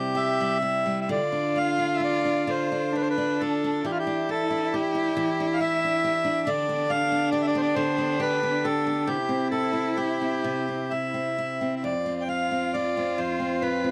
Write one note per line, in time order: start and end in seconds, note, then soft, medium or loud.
0.00 1.19 C3 medium
0.00 0.39 G3 soft
0.00 0.61 E4 soft
0.00 0.14 G4 medium
0.00 0.58 G4 medium
0.15 1.19 G4 medium
0.15 1.00 E5 medium
0.41 0.84 G3 soft
0.62 1.19 E4 soft
0.86 1.19 G3 soft
1.01 1.09 E5 medium
1.06 2.47 D3 medium
1.06 2.93 F4 medium
1.12 1.58 D5 medium
1.32 1.78 D4 soft
1.56 1.99 F4 soft
1.56 1.97 F5 medium
1.79 2.25 D4 soft
1.95 2.02 E5 medium
2.00 2.93 F4 soft
2.04 2.50 D5 medium
2.25 2.71 D4 soft
2.47 3.84 D3 medium
2.47 2.96 C5 medium
2.72 3.17 D4 soft
2.92 3.86 D4 medium
2.92 3.40 F4 soft
2.96 3.02 B4 medium
3.02 3.08 C5 medium
3.10 3.42 B4 medium
3.18 3.64 D4 soft
3.40 3.94 F4 soft
3.40 3.86 A4 medium
3.64 4.06 D4 soft
3.85 5.15 E3 medium
3.85 6.46 E4 medium
3.85 3.92 G4 medium
3.92 3.98 F4 medium
3.99 4.30 G4 medium
4.07 4.50 D4 soft
4.29 4.73 G4 soft
4.29 4.75 A4 medium
4.51 4.94 D4 soft
4.73 5.56 G4 medium
4.73 5.60 G4 medium
4.95 5.40 D4 soft
5.17 6.46 E3 medium
5.40 5.84 D4 soft
5.53 5.60 F5 soft
5.61 6.04 G4 medium
5.61 6.49 E5 loud
5.84 6.24 D4 soft
6.04 6.90 G4 medium
6.25 6.69 D4 soft
6.44 7.75 D3 medium
6.44 9.09 D4 medium
6.44 6.91 D5 medium
6.69 7.11 B3 soft
6.90 7.32 G4 soft
6.90 7.30 F5 loud
7.12 7.54 B3 soft
7.31 8.19 G4 medium
7.31 7.42 D5 medium
7.42 7.46 E5 medium
7.48 7.57 D5 medium
7.55 7.97 B3 soft
7.55 7.61 C5 medium
7.62 7.75 D5 medium
7.75 9.16 D3 medium
7.75 8.21 C5 medium
7.98 8.42 B3 soft
8.20 8.64 G4 medium
8.20 8.66 B4 medium
8.43 8.86 B3 medium
8.64 9.51 G4 medium
8.64 9.09 A4 medium
8.87 9.17 B3 soft
9.07 10.43 C3 medium
9.07 11.37 E4 medium
9.07 9.48 G4 medium
9.29 9.73 C4 soft
9.51 9.96 E4 soft
9.51 9.98 A4 medium
9.73 10.21 C4 soft
9.97 10.90 E4 medium
9.97 10.93 G4 medium
10.22 10.68 C4 soft
10.44 11.93 C3 medium
10.69 11.14 C4 soft
10.90 11.37 E4 soft
10.90 11.75 E5 medium
11.14 11.61 C4 soft
11.38 11.93 E4 soft
11.61 12.05 C4 soft
11.76 11.83 E5 soft
11.82 13.17 F2 medium
11.82 13.91 F4 medium
11.82 12.23 D5 medium
12.06 12.50 C4 soft
12.21 12.28 G5 soft
12.29 12.73 F4 soft
12.29 12.76 F5 medium
12.51 12.96 C4 soft
12.74 13.61 F4 soft
12.74 13.20 D5 medium
12.97 13.39 C4 soft
13.18 13.91 F2 medium
13.18 13.63 C5 medium
13.40 13.83 C4 soft
13.62 13.91 F4 soft
13.62 13.91 B4 medium
13.84 13.91 C4 soft